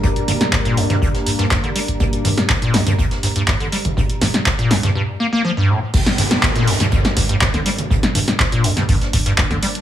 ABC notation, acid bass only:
X:1
M:4/4
L:1/16
Q:1/4=122
K:Gm
V:1 name="Acid bass" clef=bass
G,, z G,, z2 B,, F,, G,, G,, z G,, G,, G,, D, G, z | G,, z G,, z2 B,, F,, G,, G,, z G,, G,, G,, D, G, z | G,, z G,, z2 B,, F,, G,, G,, z B, B, F, G,, A,, z | G,, z G,, z2 B,, F,, G,, G,, z G,, G,, G,, D, G, z |
G,, z G,, z2 B,, F,, G,, G,, z G,, G,, G,, D, G, z |]